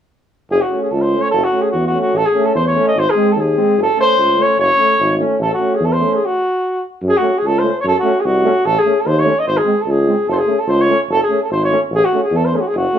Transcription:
0.50 tuba F#1, flugelhorn G#4
0.61 flugelhorn F#4
0.70 euphonium A3, trombone C#4
0.82 flugelhorn G#4
0.90 tuba C#2, flugelhorn A4
1.02 flugelhorn C5
1.12 euphonium A3, trombone C#4
1.22 flugelhorn C#5
1.31 tuba F#1, flugelhorn A4
1.44 flugelhorn F#4
1.51 euphonium A3, trombone C#4
1.62 flugelhorn G#4
1.72 tuba E2, flugelhorn F#4
1.87 flugelhorn F#4
1.93 euphonium A3, trombone C#4
2.01 flugelhorn F#4
2.13 tuba A1
2.17 flugelhorn A4
2.26 flugelhorn G#4
2.33 euphonium A3, trombone C#4
2.46 flugelhorn A4
2.55 tuba E2, flugelhorn C5
2.66 flugelhorn C#5
2.74 euphonium A3, trombone C#4
2.88 flugelhorn D#5
2.95 tuba G#1
2.99 flugelhorn C5
3.10 trombone C4, flugelhorn G#4
3.15 euphonium G#3
3.32 tuba D#2, flugelhorn A4
3.40 flugelhorn G#4
3.55 euphonium G#3, trombone C4
3.77 tuba F#1
3.82 flugelhorn A4
3.97 euphonium A3, trombone C#4, flugelhorn C5
4.18 tuba C#2
4.37 euphonium A3, trombone C#4
4.42 flugelhorn C#5
4.58 tuba F#1, flugelhorn C#5
4.77 euphonium A3, trombone C#4
5.00 tuba G#1
5.17 euphonium A3, trombone C#4
5.40 tuba A1, flugelhorn A4
5.54 flugelhorn F#4
5.58 euphonium A3, trombone C#4
5.75 flugelhorn G#4
5.80 tuba E2
5.85 flugelhorn A4
5.93 flugelhorn C5
5.99 euphonium A3, trombone C#4
6.14 flugelhorn G#4
6.26 flugelhorn F#4
7.03 tuba F#2
7.08 flugelhorn G#4
7.17 euphonium A3, flugelhorn F#4
7.22 trombone C#4
7.38 flugelhorn G#4
7.44 tuba C#2, flugelhorn A4
7.59 euphonium A3, trombone C#4, flugelhorn C5
7.80 tuba F#2, flugelhorn C#5
7.87 flugelhorn A4
7.99 flugelhorn F#4
8.03 euphonium A3, trombone C#4
8.20 flugelhorn G#4
8.25 tuba C2, flugelhorn F#4
8.44 euphonium A3, trombone C#4
8.65 tuba A1, flugelhorn A4
8.79 flugelhorn G#4
8.84 euphonium A3, trombone C#4
9.00 flugelhorn A4
9.06 tuba D#2, flugelhorn C5
9.19 flugelhorn C#5
9.24 euphonium A3, trombone C#4
9.39 flugelhorn D#5
9.47 tuba G#1, flugelhorn C5
9.57 flugelhorn G#4
9.65 euphonium G#3, trombone C4
9.82 flugelhorn A4
9.87 tuba C#2
9.91 flugelhorn G#4
10.07 euphonium G#3, trombone C4
10.28 tuba F#1, flugelhorn A4
10.32 flugelhorn A4 C5
10.38 flugelhorn G#4
10.47 euphonium A3, trombone C#4
10.59 flugelhorn A4
10.68 tuba C#2, flugelhorn C5
10.81 flugelhorn C#5
10.88 euphonium A3, trombone C#4
11.09 tuba F#1, flugelhorn A4
11.23 flugelhorn G#4
11.29 euphonium A3, trombone C#4
11.43 flugelhorn A4
11.50 tuba G#1, flugelhorn C5
11.64 flugelhorn C#5
11.70 euphonium A3, trombone C#4
11.90 tuba A1
11.95 flugelhorn G#4
12.05 flugelhorn F#4
12.13 euphonium A3, trombone C#4
12.24 flugelhorn G#4
12.32 tuba E2
12.36 flugelhorn A4
12.45 flugelhorn C5
12.53 euphonium A3, trombone C#4, flugelhorn G#4
12.61 flugelhorn F#4
12.67 flugelhorn G#4
12.74 tuba F#1, flugelhorn F#4
12.94 euphonium A3, trombone C#4

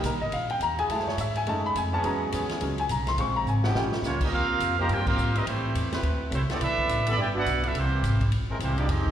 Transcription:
Already playing: grand piano G3 A#3 D#4
0.03 upright bass B1, grand piano A#4, hi-hat pedal, ride
0.12 upright bass A#1
0.21 upright bass G1, grand piano D#5
0.31 upright bass A#1, grand piano F5, ride
0.50 grand piano G5, ride
0.59 upright bass D#2, grand piano A#5, hi-hat pedal, ride
0.78 trombone section F#3 E4 G#4, grand piano G#5, ride
0.88 upright bass F#2, grand piano G#3 A3 E4 A5, ride
0.99 snare
1.03 grand piano C5
1.08 grand piano C#5, snare
1.17 upright bass G#2, grand piano E5, hi-hat pedal, ride
1.35 grand piano G#5, ride
1.46 upright bass F#2, grand piano G#3 A3 C#4 D#4 A5, ride
1.66 grand piano B5
1.75 upright bass F2, grand piano G#5, hi-hat pedal, ride
1.92 trombone section E3 B3 C#4 G#4, grand piano A5
2.04 upright bass E2, grand piano F#3 G#3 C#4 A#5, ride
2.32 upright bass D#2, trombone section E3 B3 C#4 G#4, hi-hat pedal, ride
2.49 snare, ride
2.61 upright bass C#2, grand piano F#3 G#3 C#4, ride
2.78 grand piano G#5, ride
2.89 upright bass B1, grand piano A#5, hi-hat pedal, ride
3.07 grand piano C6, snare, ride
3.17 upright bass A#1, grand piano C#3 G#3 C4 C#6, ride
3.36 grand piano A#5
3.45 upright bass G#1, grand piano G#5, hi-hat pedal
3.64 trombone section F3 C#4 D#4 G4, grand piano F#5, snare
3.74 upright bass A#1, grand piano F3 G3 C#4 G5, snare
3.92 snare
4.02 upright bass C#2, trombone section G3 A#3 C#4, trumpet section A#3 F4 G4 C#5, snare, hi-hat pedal
4.20 trombone section G3 A#3 D#4, trumpet section C#4 G4 A#4 D#5, kick, crash
4.31 upright bass D#2, trombone section A#3 C4 F4, trumpet section C4 G4 A#4 F5
4.49 muted upright bass stroke
4.60 upright bass F2, hi-hat pedal, ride
4.77 trombone section C3 F3 G3 A#3 C4 D#4 G4, trumpet section G4 C5 F5 A#5
4.87 upright bass G2, trombone section A#3 C4 G4, trumpet section F4 A#4 C5 G5, ride
5.06 trombone section A#3 C4 F4, trumpet section C4 G4 A#4 F5, kick, crash
5.17 upright bass G#2, hi-hat pedal
5.35 trombone section G3 A#3 C4 D#4 E4 B4, trumpet section C4 G4 A#4 D#5, ride
5.46 upright bass A2, trombone section E3 G3 C4, trumpet section A3 E4 G4 C5, ride
5.75 upright bass E2, hi-hat pedal, ride
5.92 trombone section F#3 C4 E4 B4, snare, ride
6.02 upright bass D2, ride
6.30 upright bass C2, trombone section F#3 A3 C4, trumpet section A3 E4 F#4 C5, hi-hat pedal, ride
6.48 trombone section F#3 G3 A3 B3 D4 E4 A4, trumpet section C4 F#4 A4 D5, snare, ride
6.59 upright bass B1, trombone section E3 B3 E4, trumpet section D4 A4 B4 E5, ride
6.78 kick
6.88 upright bass A1, hi-hat pedal, ride
7.06 trombone section D3 E3 G3 B3 E4 A4, trumpet section A4 D5 E5 B5, ride
7.17 upright bass G1, trombone section D4 E4 G4, trumpet section E4 B4 D5 G5
7.35 trombone section B3 D4 F#4, trumpet section E4 B4 D5 F#5
7.46 upright bass B1, hi-hat pedal, ride
7.63 trombone section E3 B3 E4, trumpet section D4 A4 B4 E5, ride
7.74 upright bass C2, trombone section E3 G3 C4, trumpet section A#3 E4 G4 C5, ride
8.02 upright bass G#1, hi-hat pedal, ride
8.20 kick, ride
8.31 upright bass A#1, ride
8.49 trombone section G#3 C4 E4 A#4
8.59 upright bass C2, trombone section E3 G3 C4, trumpet section A#3 E4 G4 C5, hi-hat pedal, ride
8.77 trombone section F3 G#3 D4 D#4 G4, trumpet section A#3 E4 G4 D5, ride
8.88 upright bass F2, trombone section G#3 C4 D#4, trumpet section C4 G4 G#4 D#5, ride
9.06 kick

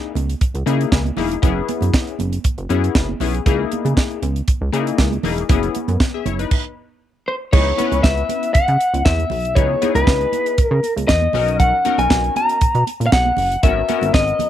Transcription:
Already playing: analog polysynth A#3 D#4 E4 G#4
0.15 analog synth bass C#2, closed hi-hat, high conga
0.30 closed hi-hat
0.41 kick, closed hi-hat, muted conga
0.54 analog synth bass C#2, closed hi-hat
0.66 analog synth bass C#3, analog polysynth A#3 D#4 E4 G#4, closed hi-hat
0.81 closed hi-hat
0.92 analog synth bass C#2, kick, snare
1.05 closed hi-hat, high conga
1.17 analog synth bass E1, analog polysynth A#3 D#4 E4 G#4, open hi-hat, muted conga, low conga
1.31 closed hi-hat
1.42 analog synth bass F#1, analog polysynth B3 C#4 E4 G#4, kick, closed hi-hat, low conga
1.69 closed hi-hat, muted conga, high conga
1.81 analog synth bass F#2, closed hi-hat, high conga
1.94 kick, snare
2.07 closed hi-hat
2.19 analog synth bass F#1, closed hi-hat, muted conga, high conga
2.33 closed hi-hat
2.44 kick, closed hi-hat
2.58 analog synth bass F#1, closed hi-hat
2.69 analog synth bass F#2, analog polysynth B3 C#4 E4 G#4, closed hi-hat, muted conga
2.84 closed hi-hat
2.95 analog synth bass F#1, kick, snare
3.09 high conga
3.20 analog synth bass B1, analog polysynth B3 C#4 E4 G#4, open hi-hat, muted conga, low conga
3.34 closed hi-hat
3.46 analog synth bass C#2, analog polysynth A#3 D#4 E4 G#4, kick, closed hi-hat, low conga
3.72 closed hi-hat, muted conga, high conga
3.85 analog synth bass C#3, closed hi-hat, high conga
3.97 kick, snare
4.10 closed hi-hat
4.22 analog synth bass C#2, closed hi-hat, muted conga, high conga
4.36 closed hi-hat
4.48 kick, closed hi-hat
4.61 analog synth bass C#2
4.72 analog synth bass C#3, analog polysynth A#3 D#4 E4 G#4, closed hi-hat
4.87 closed hi-hat
4.98 analog synth bass C#2, kick, snare, muted conga
5.12 closed hi-hat, high conga
5.23 analog synth bass E1, analog polysynth A#3 D#4 E4 G#4, open hi-hat, muted conga, low conga
5.38 closed hi-hat
5.49 analog synth bass F#1, analog polysynth B3 C#4 E4 G#4, kick, closed hi-hat, low conga
5.63 closed hi-hat
5.75 closed hi-hat, high conga
5.88 analog synth bass F#2, closed hi-hat, high conga
6.00 kick, snare
6.14 analog polysynth G#4 E5
6.26 analog synth bass F#1, analog polysynth E4 C#5, closed hi-hat, muted conga, high conga, low conga
6.39 analog polysynth D#4 B4, closed hi-hat
6.51 kick, crash
7.28 lead electric guitar C5
7.52 analog synth bass C#2, analog polysynth B3 D#4 E4 G#4, lead electric guitar C#5, kick, crash, muted conga, low conga
7.78 analog polysynth B3 C#4 E4 B4, closed hi-hat, muted conga, high conga
7.92 analog synth bass C#2, closed hi-hat, high conga
8.03 analog synth bass C#2, lead electric guitar E5, kick, snare
8.17 closed hi-hat
8.29 closed hi-hat, muted conga, high conga
8.43 closed hi-hat
8.54 analog synth bass C#3, lead electric guitar F#5, kick, closed hi-hat
8.68 analog synth bass C#3, closed hi-hat
8.81 closed hi-hat
8.94 analog synth bass C#2, closed hi-hat, high conga
9.05 analog synth bass E2, lead electric guitar E5, kick, snare
9.19 closed hi-hat, high conga
9.30 analog synth bass B1, open hi-hat, muted conga, low conga
9.45 closed hi-hat
9.55 analog synth bass C#2, analog polysynth B3 D#4 E4 G#4, lead electric guitar C#5, kick, closed hi-hat, muted conga, low conga
9.82 analog polysynth B3 D#4 E4 G#4, closed hi-hat, muted conga, high conga
9.95 analog synth bass C#2, lead electric guitar B4, closed hi-hat, high conga
10.07 analog synth bass C#2, kick, snare, muted conga
10.21 closed hi-hat
10.32 closed hi-hat, high conga
10.46 closed hi-hat
10.58 analog synth bass C#3, lead electric guitar A#4, kick, closed hi-hat, muted conga
10.71 analog synth bass C#3
10.83 closed hi-hat, muted conga
10.96 analog synth bass C#2, closed hi-hat, high conga
11.08 analog synth bass E2, lead electric guitar D#5, kick, snare
11.22 high conga
11.33 analog synth bass B1, analog polysynth C#4 D#4 F#4 A#4, open hi-hat, low conga
11.48 closed hi-hat
11.60 lead electric guitar F#5, kick, closed hi-hat, muted conga, low conga
11.85 analog polysynth C#4 D#4 F#4 A#4, closed hi-hat, muted conga, high conga
11.98 analog synth bass B1, lead electric guitar G#5, closed hi-hat, high conga
12.10 analog synth bass B1, kick, snare
12.24 closed hi-hat
12.36 lead electric guitar A#5, closed hi-hat, muted conga, high conga
12.49 closed hi-hat
12.61 analog synth bass B2, kick, closed hi-hat
12.75 analog synth bass B2, closed hi-hat
12.87 closed hi-hat, muted conga
13.00 analog synth bass A#2, closed hi-hat, high conga
13.06 lead electric guitar F5
13.12 analog synth bass B1, lead electric guitar F#5, kick, snare
13.25 high conga
13.37 analog synth bass F#1, open hi-hat, muted conga, low conga
13.52 closed hi-hat
13.63 analog synth bass G#1, analog polysynth B3 C#4 F#4 A#4, lead electric guitar E5, kick, closed hi-hat, muted conga, low conga
13.89 analog polysynth B3 C#4 F#4 A#4, closed hi-hat, muted conga, high conga
14.02 analog synth bass G#1, closed hi-hat, high conga
14.14 analog synth bass G#1, lead electric guitar D#5, kick, snare
14.28 closed hi-hat
14.39 closed hi-hat, muted conga, high conga, low conga

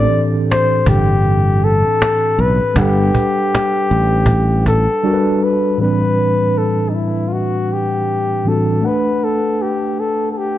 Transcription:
Already playing: tine electric piano A2 E3 C4 D4 G4 A4, flugelhorn D5
0.11 cajon slap
0.51 flugelhorn C5, cajon slap
0.73 cajon slap
0.86 fingered electric bass G1, flugelhorn G4, cajon bass
1.24 cajon slap
1.48 cajon slap
1.62 flugelhorn A4, cajon slap
2.02 cajon slap
2.24 cajon slap
2.38 fingered electric bass B1, flugelhorn B4, cajon slap
2.60 cajon slap
2.74 fingered electric bass G1, tine electric piano G3 D4 F#5, cajon bass
2.79 flugelhorn G4, tine electric piano A4 B4
3.00 cajon slap
3.15 cajon bass
3.38 cajon slap
3.55 cajon slap
3.76 cajon slap
3.90 fingered electric bass A1, cajon slap
4.14 cajon slap
4.26 cajon bass
4.52 cajon slap
4.66 flugelhorn A4, cajon bass
4.91 cajon slap
5.03 tine electric piano G3 D4 F#4 A4 A#4
5.14 tine electric piano B4
5.44 flugelhorn B4
5.78 tine electric piano A2 E3 G3
5.82 tine electric piano C4 D4 B4, flugelhorn B4
6.58 flugelhorn A4
6.89 flugelhorn D#4
6.95 flugelhorn E4
7.28 flugelhorn F4
7.33 flugelhorn F#4
7.73 flugelhorn G4
8.44 tine electric piano A2 E3 G3 C4 D4, flugelhorn A4
8.48 tine electric piano F#4
8.81 tine electric piano A3 D4 F#5
8.86 flugelhorn B4, tine electric piano B4
9.24 flugelhorn A4
9.62 flugelhorn G4
10.00 flugelhorn A4
10.32 flugelhorn A4
10.38 flugelhorn G4

